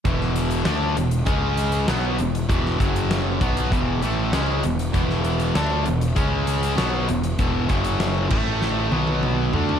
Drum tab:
CC |----------------|----------------|----------------|------x---------|
HH |x-xxx-xxx-xxx-xx|x-xxx-xxx-x-x-xx|x-xxx-xxx-xxx-xx|x-xxx-----------|
SD |-o--o-------o---|-o--o-------o---|-o--o-------o---|----o---o-------|
T1 |----------------|----------------|----------------|----------oo----|
T2 |----------------|----------------|----------------|------------o---|
FT |----------------|----------------|----------------|--------------oo|
BD |o-------o-------|o-o---o-o-------|o-------o-------|o-o---o---------|